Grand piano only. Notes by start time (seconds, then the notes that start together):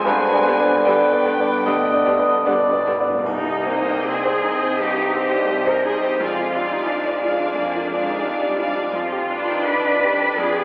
0.05 G2
0.32 B3 D4 D5
0.59 B3 D4 D5
0.86 B3 D4 D5
1.12 B3 D4 D5
1.39 B3 D4 D5
1.66 D2
1.93 B3 D4 D5
2.19 B3 D4 D5
2.46 B3 D4 D5
2.72 B3 D4 D5
3.00 B3 D4 D5
3.25 C2
3.44 D#4
3.65 C4
3.85 D4
4.06 C4
4.25 C5
4.44 D#4
4.62 C4
4.79 G2
4.97 D#4
5.15 C4
5.33 D4
5.50 C4
5.67 C5
5.85 D#4
6.02 C4
6.20 F2
6.38 F4
6.55 D4
6.71 D#4
6.89 D4
7.06 D5
7.23 F4
7.40 D4
7.58 F2
7.75 F4
7.93 D4
8.08 D#4
8.25 D4
8.41 D5
8.58 F4
8.76 D4
8.93 F2
9.12 G4
9.31 D4
9.50 D#4
9.69 D4
9.86 D5
10.04 G4
10.21 D4
10.38 F2
10.56 G4